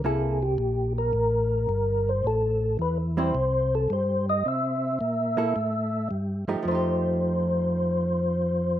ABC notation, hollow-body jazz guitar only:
X:1
M:4/4
L:1/8
Q:"Swing" 1/4=109
K:Cdor
V:1 name="Hollow-body jazz guitar"
[B,=EA] z6 z | z3 [G,C=E] z4 | z3 [B,=EA] z3 [F,A,_EG] | [F,A,EG]8 |]